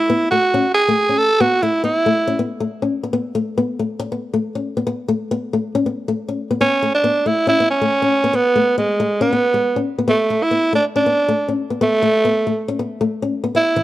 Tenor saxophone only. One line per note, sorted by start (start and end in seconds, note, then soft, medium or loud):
0.00 0.29 E4 medium
0.31 0.72 F#4 medium
0.74 1.19 G#4 medium
1.18 1.42 A4 loud
1.41 1.64 F#4 medium
1.62 1.84 E4 medium
1.84 2.45 E4 medium
6.61 6.92 C#4 loud
6.95 7.28 D4 medium
7.27 7.48 E4 medium
7.49 7.68 E4 loud
7.70 8.37 C#4 medium
8.36 8.77 B3 medium
8.78 9.18 G#3 medium
9.22 9.83 B3 medium
10.09 10.44 A3 medium
10.43 10.74 E4 medium
10.75 10.84 D4 medium
10.96 11.56 D4 medium
11.82 12.64 A3 loud
13.56 13.83 E4 loud